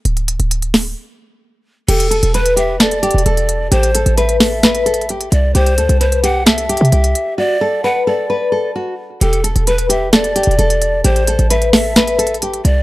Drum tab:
CC |------------------------------------------------|x-----------------------------------------------|------------------------------------------------|------------------------------------------------|
HH |x--x--x--x--x--x--o-----------------------------|x--x--x--x--x--x--x-----x--x--x-x-x-x--x--x-----|x--x--x--x--x--x--o-----x--x--x-x-x-x--x--x-----|x--x--x--x--x--x--x-----x--x--x-x-x-x--x--x-----|
SD |------------------o-----------------------------|------------------------o-----------------------|------------------o-----o-----------------------|------------------------o-----------------------|

CC |------------------------------------------------|------------------------------------------------|------------------------------------------------|
HH |------------------------------------------------|x--x--x--x--x--x--x-----x--x--x-x-x-x--x--x-----|x--x--x--x--x--x--o-----x--x--x-x-x-x--x--x-----|
SD |------------------------------------------------|------------------------o-----------------------|------------------o-----o-----------------------|